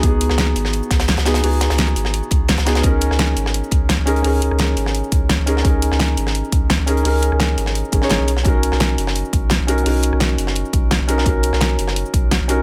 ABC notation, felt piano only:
X:1
M:4/4
L:1/16
Q:1/4=171
K:G#m
V:1 name="Felt piano"
[B,DFG]8- [B,DFG]2 z4 [B,DFG]2 | [B,DFG]8- [B,DFG]2 z4 [B,DFG]2 | [CDGA]8- [CDGA]2 z4 [CDGA]2 | [CDGA]8- [CDGA]2 z4 [CDGA]2 |
[CDGA]8- [CDGA]2 z4 [CDGA]2 | [CDGA]8- [CDGA]2 [CDGA] [CDGc]3 z2 | [CDFA]8- [CDFA]2 z4 [CDFA]2 | [CDFA]8- [CDFA]2 z4 [CDFA]2 |
[CDFA]8- [CDFA]2 z4 [CDFA]2 |]